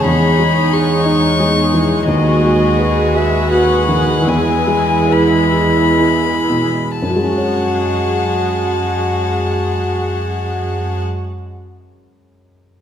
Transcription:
0.00 2.06 G#4 soft
0.00 2.05 C#5 soft
0.05 2.04 E2 soft
0.05 2.05 E2 soft
0.05 4.25 G#3 soft
0.05 2.09 D#4 soft
0.05 0.74 B5 medium
0.39 0.93 G#3 soft
0.72 1.26 G#4 soft
0.72 2.08 C#6 medium
1.05 1.60 D#4 soft
1.40 1.94 G#3 soft
1.74 2.08 E3 soft
2.07 4.24 D#2 soft
2.07 4.24 F#4 soft
2.07 6.69 G#4 soft
2.07 6.73 B4 soft
2.07 3.18 D#5 medium
2.43 3.01 G#3 soft
2.79 3.37 B4 soft
3.14 3.74 G#4 soft
3.14 3.52 E5 medium
3.51 4.12 F#4 soft
3.51 4.30 F#5 medium
3.89 4.28 D#3 soft
4.27 6.97 E2 soft
4.27 6.74 E2 soft
4.27 6.70 G#3 soft
4.27 6.69 E4 soft
4.27 5.13 G#5 medium
4.67 5.36 G#3 soft
5.08 5.81 B4 soft
5.08 7.03 B5 medium
5.52 6.29 G#4 soft
6.00 6.81 E4 soft
6.50 7.01 B2 soft
7.02 11.00 F#2 soft
7.02 11.00 G#3 soft
7.02 10.99 F#4 soft
7.02 11.00 G#4 soft
7.02 11.01 F#5 soft
7.02 11.02 A5 soft
7.09 11.07 F#3 soft
7.16 11.14 G#3 soft
7.23 11.21 C#4 soft
7.30 11.28 F#4 soft
7.37 11.35 C#5 soft

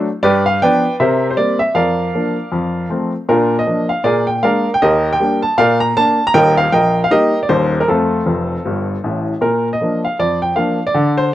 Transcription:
0.23 0.55 G2 medium
0.23 0.45 G4 medium
0.23 0.45 B4 medium
0.23 0.42 D5 medium
0.46 0.59 F5 medium
0.62 0.83 F3 soft
0.62 0.83 B3 soft
0.62 0.84 D4 soft
0.62 0.98 B4 medium
0.62 0.98 D5 medium
0.62 0.94 G5 loud
1.00 1.32 C3 medium
1.00 1.29 A#4 medium
1.00 1.29 C5 medium
1.00 1.26 E5 medium
1.31 1.38 C5 medium
1.37 1.58 G3 soft
1.37 1.59 A#3 soft
1.37 1.59 C4 soft
1.37 1.57 D5 medium
1.59 1.73 E5 medium
1.75 2.08 F2 medium
1.75 3.09 A#4 medium
1.75 3.09 D5 medium
1.75 2.92 F5 medium
2.14 2.35 F3 soft
2.14 2.35 A#3 soft
2.14 2.36 D4 soft
2.52 2.84 F2 medium
2.90 3.11 F3 soft
2.90 3.11 A3 soft
2.90 3.11 C4 soft
3.29 3.61 A#2 medium
3.29 3.58 D4 medium
3.29 3.58 F4 medium
3.29 3.55 A#4 medium
3.59 3.85 D#5 medium
3.66 3.87 F3 soft
3.66 3.88 A#3 soft
3.66 3.88 D4 soft
3.89 4.02 F5 medium
4.04 4.37 A#2 medium
4.04 4.27 G#4 medium
4.04 4.27 A#4 medium
4.04 4.24 D5 medium
4.27 4.40 G5 medium
4.43 4.64 G#3 soft
4.43 4.64 A#3 soft
4.43 4.65 D4 soft
4.43 4.72 A#4 medium
4.43 4.72 D5 medium
4.43 4.69 F5 medium
4.74 4.82 G5 medium
4.82 5.14 D#2 medium
4.82 5.11 G4 medium
4.82 5.11 A#4 medium
4.82 5.08 D#5 medium
5.13 5.38 G5 medium
5.20 5.41 G3 soft
5.20 5.41 A#3 soft
5.20 5.41 D4 soft
5.42 5.56 A5 medium
5.58 5.90 A#2 medium
5.58 5.80 A#4 medium
5.58 5.80 D5 medium
5.58 5.77 F5 medium
5.80 5.94 A#5 medium
5.97 6.18 A#3 medium
5.97 6.18 D4 medium
5.97 6.23 A5 loud
6.27 6.35 A#5 loud
6.34 6.65 D#1 medium
6.34 6.65 D#2 medium
6.34 6.56 A#4 medium
6.34 6.56 D#5 medium
6.34 6.54 G5 loud
6.57 6.70 F5 medium
6.72 7.03 A#1 medium
6.72 7.02 A#4 medium
6.72 7.02 D#5 medium
6.72 6.99 G5 loud
7.04 7.11 F5 medium
7.11 7.32 G3 soft
7.11 7.32 A#3 soft
7.11 7.32 D#4 soft
7.11 7.40 G4 medium
7.11 7.40 A#4 medium
7.11 7.37 D#5 medium
7.43 7.50 D5 medium
7.49 7.80 D#1 medium
7.49 7.80 D#2 medium
7.49 7.75 C5 medium
7.80 7.88 A#4 medium
7.88 8.19 F2 medium
7.88 8.20 A3 medium
7.88 9.22 C4 medium
7.88 9.22 F4 medium
7.88 9.05 A4 medium
8.26 8.55 F1 medium
8.26 8.55 F2 medium
8.65 8.93 G1 medium
8.65 8.94 G2 medium
9.04 9.32 A1 medium
9.04 9.32 A2 medium
9.41 9.74 A#2 medium
9.41 9.67 A#4 medium
9.73 9.98 D#5 medium
9.81 10.02 F3 soft
9.81 10.02 A#3 soft
9.81 10.02 D4 soft
10.05 10.17 F5 medium
10.19 10.51 F2 medium
10.19 10.38 D5 medium
10.42 10.54 G5 medium
10.56 10.77 F3 soft
10.56 10.77 A#3 soft
10.56 10.78 D4 medium
10.56 10.82 F5 medium
10.87 11.12 D5 medium
10.94 11.27 D3 medium
11.18 11.30 C5 medium

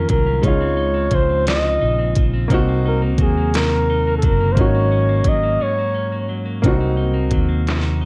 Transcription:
0.00 0.38 D#3 medium
0.00 0.42 D#3 medium
0.00 0.39 A#3 medium
0.00 0.26 C#4 medium
0.00 0.40 C#4 medium
0.00 0.42 F4 medium
0.00 0.45 F4 medium
0.00 0.10 A#4 loud
0.09 0.41 C2 loud
0.09 0.50 F#3 medium
0.09 0.46 A#4 medium
0.09 kick loud
0.09 closed hi-hat medium
0.26 0.60 C#4 medium
0.42 1.09 C#2 loud
0.42 1.45 C#3 medium
0.42 2.45 G#3 medium
0.42 0.76 D#4 medium
0.42 2.47 D#4 medium
0.42 1.16 C#5 loud
0.42 kick loud
0.42 closed hi-hat medium
0.47 2.48 F4 medium
0.60 0.94 C4 medium
0.77 1.47 D#4 medium
0.94 1.29 C4 medium
1.11 1.77 C#2 loud
1.11 2.16 F3 medium
1.11 1.48 C5 loud
1.11 kick loud
1.11 closed hi-hat medium
1.29 1.64 C4 medium
1.47 2.50 C#3 medium
1.47 1.81 D#4 medium
1.47 2.21 D#5 loud
1.47 snare loud
1.47 closed hi-hat medium
1.64 1.98 C4 medium
1.82 2.13 A#1 medium
1.82 2.51 D#4 medium
1.99 2.33 C4 medium
2.16 2.48 A#1 medium
2.16 2.58 F3 medium
2.16 kick medium
2.16 closed hi-hat medium
2.34 2.68 C4 medium
2.48 3.19 C2 loud
2.48 3.53 C3 medium
2.48 4.52 A#3 medium
2.48 4.53 C4 medium
2.48 2.85 D#4 medium
2.48 4.54 D#4 medium
2.48 kick loud
2.48 closed hi-hat medium
2.54 4.55 F#4 medium
2.69 3.02 A#3 medium
2.86 3.55 D#4 medium
2.86 3.02 A#4 medium
3.02 3.37 A#3 medium
3.18 4.26 D#2 medium
3.18 4.24 F#3 medium
3.18 3.58 G#4 medium
3.18 kick medium
3.18 closed hi-hat medium
3.37 3.71 A#3 medium
3.54 4.64 C3 medium
3.54 3.90 D#4 medium
3.54 4.17 A#4 loud
3.54 snare loud
3.54 closed hi-hat medium
3.71 4.07 A#3 medium
3.90 4.58 D#4 medium
4.07 4.40 A#3 medium
4.18 4.27 A4 medium
4.22 4.58 F#1 loud
4.22 5.26 F#3 medium
4.22 4.54 A#4 loud
4.22 kick medium
4.22 closed hi-hat medium
4.41 4.74 A#3 medium
4.53 6.59 A#3 medium
4.53 4.62 C5 medium
4.57 5.22 G#1 loud
4.57 5.59 G#2 medium
4.57 6.60 C#4 medium
4.57 4.90 C#4 medium
4.57 6.61 D#4 medium
4.57 6.62 F#4 medium
4.57 5.30 C#5 loud
4.57 kick loud
4.57 closed hi-hat medium
4.75 5.09 A#3 medium
4.92 5.60 C#4 medium
5.09 5.43 A#3 medium
5.24 5.57 G#1 medium
5.24 6.29 F#3 medium
5.24 kick loud
5.24 closed hi-hat medium
5.29 5.64 D#5 loud
5.43 5.78 A#3 medium
5.61 6.71 G#2 medium
5.61 5.93 C#4 medium
5.61 6.39 C#5 loud
5.79 6.12 A#3 medium
5.95 6.63 C#4 medium
6.12 6.45 A#3 medium
6.29 7.32 F#3 medium
6.46 6.80 A#3 medium
6.62 7.33 C2 loud
6.62 7.66 C3 medium
6.62 8.05 A#3 medium
6.62 8.05 C4 medium
6.62 6.71 D4 medium
6.62 6.97 D#4 medium
6.62 kick loud
6.62 closed hi-hat medium
6.67 8.05 F#4 medium
6.72 8.05 D#4 medium
6.80 7.13 A#3 medium
6.97 7.67 D#4 medium
7.14 7.48 A#3 medium
7.31 8.05 D#2 medium
7.31 8.05 F#3 medium
7.31 kick loud
7.31 closed hi-hat medium
7.49 7.83 A#3 medium
7.67 8.05 C3 medium
7.67 8.01 D#4 medium
7.67 snare loud
7.67 closed hi-hat medium
7.84 8.05 A#3 medium
8.01 8.05 D#4 medium

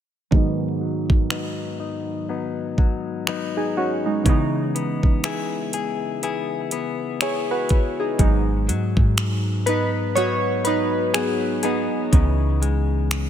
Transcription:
0.31 4.26 G#2 medium
0.31 4.21 D#3 medium
0.31 4.22 F#3 medium
0.31 2.75 G#3 medium
0.31 kick loud
0.35 2.75 B3 medium
0.35 2.76 D#4 medium
0.81 1.29 F#3 medium
1.10 kick medium
1.30 2.28 F#3 medium
1.30 2.29 B3 medium
1.30 1.79 D#4 medium
1.30 finger snap loud
1.80 2.29 D#4 medium
2.29 2.77 F#3 medium
2.29 3.28 B3 medium
2.29 3.28 D#4 medium
2.78 3.27 F#3 medium
2.78 kick medium
3.27 4.37 F#3 medium
3.27 4.75 B3 medium
3.27 4.38 D#4 medium
3.27 finger snap medium
3.57 3.76 D#4 medium
3.57 3.76 G#4 medium
3.77 4.04 C#4 medium
3.77 4.04 F#4 medium
4.06 4.25 G#3 medium
4.06 4.28 D#4 medium
4.24 8.14 C#3 medium
4.24 8.19 C#3 medium
4.24 8.15 E3 medium
4.24 8.15 G#3 medium
4.24 kick loud
4.24 closed hi-hat medium
4.28 8.16 B3 medium
4.28 7.19 D#4 medium
4.75 5.24 B3 medium
4.75 closed hi-hat medium
5.03 kick medium
5.24 6.23 B3 medium
5.24 6.22 E4 medium
5.24 5.73 G#4 medium
5.24 finger snap loud
5.24 closed hi-hat medium
5.73 6.24 G#4 medium
5.73 closed hi-hat medium
6.23 6.72 B3 medium
6.23 7.21 E4 medium
6.23 7.22 G#4 medium
6.23 closed hi-hat medium
6.71 7.21 B3 medium
6.71 closed hi-hat medium
7.21 9.66 B3 medium
7.21 8.31 E4 medium
7.21 7.49 G#4 medium
7.21 8.72 G#4 medium
7.21 7.48 C#5 medium
7.21 finger snap medium
7.21 closed hi-hat medium
7.51 7.97 F#4 medium
7.51 7.97 B4 medium
7.69 kick medium
7.69 closed hi-hat medium
8.00 8.20 D#4 soft
8.00 8.46 G#4 medium
8.19 8.70 G#1 loud
8.19 12.13 G#2 medium
8.19 12.09 F#3 medium
8.19 11.15 B3 soft
8.19 9.67 D#4 medium
8.19 kick loud
8.19 closed hi-hat medium
8.69 8.96 G#2 medium
8.69 10.15 F#3 medium
8.69 closed hi-hat medium
8.97 11.88 G#2 medium
8.97 kick medium
9.17 finger snap loud
9.17 closed hi-hat medium
9.66 10.16 B3 medium
9.66 10.13 D#4 medium
9.66 10.17 B4 medium
9.66 closed hi-hat medium
10.15 11.13 F#3 medium
10.15 11.64 B3 medium
10.15 11.63 D#4 medium
10.15 10.62 F#4 medium
10.15 10.66 C#5 loud
10.15 closed hi-hat medium
10.64 11.12 D#4 medium
10.64 11.15 B4 medium
10.64 closed hi-hat medium
11.14 11.62 F#3 medium
11.14 11.61 B3 medium
11.14 11.60 G#4 medium
11.14 finger snap medium
11.14 closed hi-hat medium
11.63 12.24 F#3 medium
11.63 13.30 B3 medium
11.63 12.12 B3 medium
11.63 12.25 D#4 medium
11.63 13.30 G#4 medium
11.63 closed hi-hat medium
12.12 13.30 C#2 loud
12.12 13.30 C#3 medium
12.12 13.30 E3 medium
12.12 13.30 B3 soft
12.12 13.30 D#4 medium
12.12 kick loud
12.12 closed hi-hat medium
12.62 13.30 G#3 medium
12.62 closed hi-hat medium
13.11 finger snap loud
13.11 closed hi-hat medium

